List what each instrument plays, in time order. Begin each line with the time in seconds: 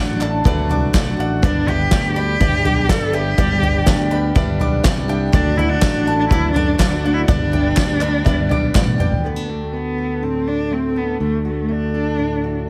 Already playing: fingered electric bass A1, grand piano D2 D3 F#3 A3 D4 A4 B4 C5 D5 E5, steel-string acoustic guitar D3 F#3 A3 D4 F#4, cello D4, mandolin D5 F#5
0.20 grand piano F#3 A3 D4 A4 D5, steel-string acoustic guitar A3 D4 F#4, mandolin A5, clap
0.44 fingered electric bass D2, steel-string acoustic guitar F#3 A3 D4 F#4, grand piano F#3 A3 D4 A4 B4, mandolin D5, kick, floor tom
0.69 fingered electric bass C2, grand piano F#3 A3 D4 A4 D5, steel-string acoustic guitar A3 D4 F#4, mandolin D6, floor tom
0.93 fingered electric bass B1, steel-string acoustic guitar D3 F#3 A3 D4 F#4, grand piano F#3 A3 D4 A4 D5, mandolin D5, kick, snare, clap
1.17 fingered electric bass A1, grand piano F#3 A3 D4 A4 D5, steel-string acoustic guitar A3 D4 F#4, mandolin F#5
1.42 fingered electric bass G1, grand piano G1 G2 G3 B3 D4 B4 D5, steel-string acoustic guitar G2 D3 G3 B3 D4 G4, cello D4, mandolin D5, kick, floor tom
1.66 grand piano G3 B3 D4 B4 E5, steel-string acoustic guitar G3 B3 D4 G4, cello G4, mandolin G5, floor tom
1.91 fingered electric bass D2, steel-string acoustic guitar G2 D3 G3 B3 D4 G4, grand piano G3 B3 D4 B4 E5, mandolin D5, kick, snare, clap
2.15 grand piano G3 B3 D4 B4 D5, steel-string acoustic guitar G3 B3 D4 G4, cello G4, mandolin B5
2.40 fingered electric bass G1, steel-string acoustic guitar G3 B3 D4 G4, grand piano G3 B3 D4 B4 E5, mandolin D5, kick, floor tom
2.64 fingered electric bass B1, grand piano G3 B3 D4 B4 D5, steel-string acoustic guitar G3 B3 D4 G4, mandolin D6, floor tom
2.89 steel-string acoustic guitar G2 D3 G3 B3 D4 G4, grand piano G3 B3 D4 B4 D5, cello A4, mandolin D5, kick, snare, clap
3.13 grand piano G3 B3 D4 B4 E5, steel-string acoustic guitar G3 B3 D4 G4, cello G4, mandolin G5
3.37 fingered electric bass G1, grand piano G1 G2 G3 B3 D4 B4 D5, steel-string acoustic guitar G2 D3 G3 B3 D4 G4, mandolin D5, kick, floor tom
3.62 grand piano G3 B3 D4 B4 D5, steel-string acoustic guitar G3 B3 D4 G4, mandolin G5, floor tom
3.86 fingered electric bass D2, steel-string acoustic guitar G2 D3 G3 B3 D4 G4, grand piano G3 B3 D4 B4 D5, mandolin D5, kick, snare, clap
4.11 grand piano G3 B3 D4 B4 D5, steel-string acoustic guitar G3 B3 D4 G4, mandolin B5
4.35 fingered electric bass G1, steel-string acoustic guitar G3 B3 D4 G4, grand piano G3 B3 D4 B4 E5, mandolin D5, kick, floor tom
4.60 fingered electric bass B1, grand piano G3 B3 D4 B4 D5, steel-string acoustic guitar G3 B3 D4 G4, mandolin D6, floor tom
4.84 fingered electric bass C2, steel-string acoustic guitar G2 D3 G3 B3 D4 G4, grand piano G3 B3 D4 B4 E5 G5, mandolin D5, kick, snare, clap
5.08 grand piano G3 B3 D4 B4 E5, steel-string acoustic guitar G3 B3 D4 G4, mandolin G5
5.32 fingered electric bass D2, grand piano D2 D3 F#3 A3 D4 A4 D5, steel-string acoustic guitar D3 F#3 A3 D4 F#4, cello D4, mandolin D5, kick, floor tom
5.56 grand piano F#3 A3 D4 A4 D5, steel-string acoustic guitar A3 D4 F#4, cello E4, mandolin F#5, floor tom
5.69 cello D4
5.81 fingered electric bass A1, steel-string acoustic guitar D3 F#3 A3 D4 F#4, grand piano F#3 A3 D4 A4 D5, mandolin D5, kick, snare, clap
6.05 grand piano F#3 A3 D4 A4 D5, steel-string acoustic guitar D4 F#4, mandolin A5
6.09 steel-string acoustic guitar A3
6.18 cello D4
6.29 fingered electric bass D2, grand piano F#3 A3 D4 A4 B4, steel-string acoustic guitar F#3 A3 D4 F#4, cello E4, mandolin D5, kick, floor tom
6.53 fingered electric bass F#2, grand piano F#3 A3 D4 A4 D5, cello D4, steel-string acoustic guitar D4 F#4, mandolin D6, floor tom
6.57 steel-string acoustic guitar A3
6.77 fingered electric bass D2, steel-string acoustic guitar D3 F#3 A3 D4 F#4, grand piano F#3 A3 D4 A4 D5, cello D4, mandolin D5, kick, snare, clap
7.03 grand piano F#3 A3 D4 A4 D5, steel-string acoustic guitar A3 D4 F#4, mandolin F#5
7.14 cello E4
7.27 grand piano G1 G2 G3 B3 D4 B4 D5, fingered electric bass G1, steel-string acoustic guitar G2 D3 G3 B3 D4 G4, cello D4, mandolin D5, kick, floor tom
7.52 grand piano G3 B3 D4 B4 E5, steel-string acoustic guitar G3 B3 D4 G4, mandolin G5, floor tom
7.76 fingered electric bass D2, steel-string acoustic guitar G2 D3 G3 B3 D4 G4, grand piano G3 B3 D4 B4 D5, mandolin D5, kick, snare, clap
8.00 grand piano G3 B3 D4 B4 D5, steel-string acoustic guitar G3 B3 D4 G4, mandolin B5, clap
8.25 fingered electric bass G1, steel-string acoustic guitar G3 B3 D4 G4, grand piano G3 B3 D4 B4 E5, mandolin D5, kick, floor tom
8.49 fingered electric bass B1, grand piano G3 B3 D4 B4 D5, steel-string acoustic guitar G3 B3 D4 G4, mandolin D6, floor tom
8.74 fingered electric bass A1, steel-string acoustic guitar G2 D3 G3 B3 D4 G4, grand piano G3 B3 D4 B4 D5 F#5, mandolin D5, kick, snare, clap
8.87 high tom
8.98 grand piano G3 B3 D4 B4 D5 G5, steel-string acoustic guitar G3 B3 D4 G4, mandolin G5, mid tom
9.12 floor tom
9.23 fingered electric bass D2, steel-string acoustic guitar D3 B3, cello B3
9.36 steel-string acoustic guitar D4
9.49 cello A3, steel-string acoustic guitar F#4
9.73 steel-string acoustic guitar A3, cello B3
9.98 steel-string acoustic guitar A4
10.22 steel-string acoustic guitar A2 D4, cello C4
10.48 cello D4, steel-string acoustic guitar F#4
10.71 steel-string acoustic guitar A3, cello C4
10.96 cello B3, steel-string acoustic guitar A4
11.20 fingered electric bass D2, steel-string acoustic guitar D3 D4, cello A3
11.45 cello A3, steel-string acoustic guitar F#4
11.68 steel-string acoustic guitar A3, cello D4
11.94 steel-string acoustic guitar A4
12.18 steel-string acoustic guitar A2 D4
12.44 steel-string acoustic guitar F#4